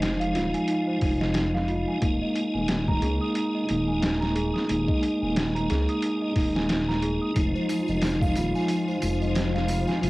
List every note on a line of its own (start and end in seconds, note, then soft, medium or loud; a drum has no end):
0.00 0.33 F1 medium
0.00 0.98 F3 medium
0.00 0.99 G#3 medium
0.00 0.68 D#4 medium
0.00 1.01 D#4 loud
0.00 0.34 F4 medium
0.00 0.87 C5 medium
0.00 1.21 D#5 medium
0.00 0.20 F5 medium
0.00 0.54 G#5 medium
0.00 snare loud
0.00 closed hi-hat medium
0.20 0.33 F5 loud
0.20 closed hi-hat soft
0.34 0.53 D#1 medium
0.34 0.53 F4 medium
0.34 snare soft
0.34 closed hi-hat medium
0.54 0.67 G#5 medium
0.54 closed hi-hat soft
0.68 0.79 D#4 medium
0.68 closed hi-hat medium
0.87 1.01 C5 medium
1.00 1.85 F1 medium
1.00 1.98 F3 medium
1.00 1.99 G#3 medium
1.00 1.19 D#4 medium
1.00 kick medium
1.00 open hi-hat medium
1.05 2.00 D#4 medium
1.21 1.35 D#5 medium
1.21 snare soft
1.34 1.53 D#4 medium
1.34 snare loud
1.34 closed hi-hat medium
1.54 1.67 F5 medium
1.54 snare soft
1.68 1.87 F4 loud
1.68 closed hi-hat medium
1.88 2.01 G#5 medium
2.01 2.19 D#1 medium
2.01 3.65 G#3 loud
2.01 3.66 A#3 medium
2.01 2.13 D#4 medium
2.01 3.67 D#4 loud
2.01 kick loud
2.01 closed hi-hat medium
2.21 2.35 D#5 medium
2.35 2.53 D#4 medium
2.35 closed hi-hat medium
2.54 3.00 D#1 medium
2.54 2.68 G#5 medium
2.68 2.86 D#4 medium
2.68 snare loud
2.68 closed hi-hat medium
2.88 3.01 A#5 loud
2.88 kick medium
3.02 3.19 C#2 medium
3.02 3.20 G#4 medium
3.02 closed hi-hat medium
3.21 3.34 D#6 medium
3.35 3.47 D#4 medium
3.35 closed hi-hat medium
3.55 3.68 D#5 medium
3.67 4.52 D#1 medium
3.67 4.65 G#3 medium
3.67 4.66 A#3 medium
3.67 3.86 D#4 medium
3.67 closed hi-hat medium
3.71 4.67 D#4 medium
3.88 4.02 G#5 medium
4.01 4.19 D#4 medium
4.01 snare loud
4.01 closed hi-hat medium
4.21 4.34 A#5 medium
4.21 snare soft
4.35 4.54 G#4 medium
4.35 closed hi-hat medium
4.54 4.67 D#6 medium
4.54 snare soft
4.68 4.87 D#1 medium
4.68 6.32 G#3 medium
4.68 6.33 A#3 medium
4.68 4.79 D#4 medium
4.68 closed hi-hat medium
4.72 6.34 D#4 loud
4.88 5.01 D#5 medium
4.88 kick medium
5.03 5.20 D#4 medium
5.03 closed hi-hat medium
5.22 5.67 D#1 medium
5.22 5.35 G#5 medium
5.36 5.53 D#4 medium
5.36 snare loud
5.36 closed hi-hat medium
5.55 5.68 A#5 loud
5.55 closed hi-hat soft
5.70 5.87 C#2 medium
5.70 5.88 G#4 loud
5.70 snare soft
5.70 closed hi-hat medium
5.89 6.01 D#6 medium
5.89 closed hi-hat soft
6.02 6.14 D#4 medium
6.02 closed hi-hat medium
6.22 6.35 D#5 medium
6.33 7.18 D#1 medium
6.33 7.31 G#3 medium
6.33 7.32 A#3 medium
6.33 6.53 D#4 medium
6.33 kick medium
6.33 open hi-hat medium
6.38 7.33 D#4 medium
6.55 6.69 G#5 medium
6.55 snare medium
6.69 6.86 D#4 medium
6.69 snare loud
6.69 closed hi-hat medium
6.88 7.01 A#5 medium
6.88 snare soft
7.02 7.21 G#4 medium
7.02 closed hi-hat medium
7.21 7.34 D#6 medium
7.34 7.53 F1 medium
7.34 8.98 F3 medium
7.34 10.10 F3 medium
7.34 8.99 G#3 medium
7.34 7.47 D#4 medium
7.34 10.10 F4 medium
7.34 kick loud
7.34 closed hi-hat medium
7.34 tambourine soft
7.39 9.01 D#4 loud
7.55 7.69 C5 medium
7.55 tambourine soft
7.69 7.87 D#4 medium
7.69 closed hi-hat medium
7.69 tambourine medium
7.69 triangle medium
7.88 8.34 F1 medium
7.88 8.02 D#5 medium
7.88 tambourine soft
8.02 8.20 D#4 medium
8.02 snare loud
8.02 closed hi-hat medium
8.02 tambourine medium
8.22 8.34 F5 medium
8.22 kick loud
8.22 tambourine soft
8.22 triangle medium
8.36 8.53 D#1 medium
8.36 8.54 F4 medium
8.36 closed hi-hat medium
8.36 tambourine medium
8.55 8.68 G#5 medium
8.55 tambourine soft
8.69 8.80 D#4 medium
8.69 closed hi-hat medium
8.69 tambourine medium
8.88 9.02 C5 medium
8.88 tambourine soft
9.01 9.85 F1 medium
9.01 9.98 F3 medium
9.01 9.99 G#3 medium
9.01 9.20 D#4 medium
9.01 closed hi-hat medium
9.01 tambourine medium
9.06 10.01 D#4 medium
9.21 9.35 D#5 medium
9.21 tambourine soft
9.35 9.53 D#4 medium
9.35 snare loud
9.35 closed hi-hat medium
9.35 tambourine soft
9.54 9.67 F5 medium
9.54 snare soft
9.54 tambourine soft
9.68 9.87 F4 medium
9.68 closed hi-hat medium
9.68 tambourine medium
9.87 10.01 G#5 medium
9.87 snare soft
9.87 tambourine soft
10.01 10.10 F1 medium
10.01 10.10 F3 medium
10.01 10.10 G#3 medium
10.01 10.10 D#4 medium
10.01 closed hi-hat medium
10.01 tambourine soft
10.06 10.10 D#4 loud